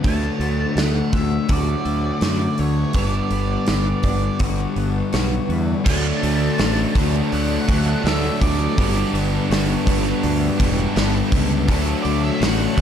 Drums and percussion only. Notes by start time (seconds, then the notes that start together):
0.04 kick, open hi-hat
0.41 open hi-hat
0.77 snare, open hi-hat
1.13 kick, open hi-hat
1.49 kick, open hi-hat
1.85 open hi-hat
2.21 snare, open hi-hat
2.58 open hi-hat
2.93 kick, open hi-hat
3.31 open hi-hat
3.66 snare, open hi-hat
4.03 kick, open hi-hat
4.39 kick, open hi-hat
4.76 open hi-hat
5.13 snare, open hi-hat
5.50 open hi-hat
5.86 kick, crash
6.23 open hi-hat
6.58 snare, open hi-hat
6.95 kick, open hi-hat
7.32 open hi-hat
7.69 kick, open hi-hat
8.06 snare, open hi-hat
8.41 kick, open hi-hat
8.78 kick, open hi-hat
9.15 open hi-hat
9.51 snare, open hi-hat
9.87 kick, open hi-hat
10.07 snare
10.23 open hi-hat
10.60 kick, open hi-hat
10.96 snare, open hi-hat
11.32 kick, open hi-hat
11.68 kick, open hi-hat
12.05 open hi-hat
12.42 snare, open hi-hat
12.78 kick, open hi-hat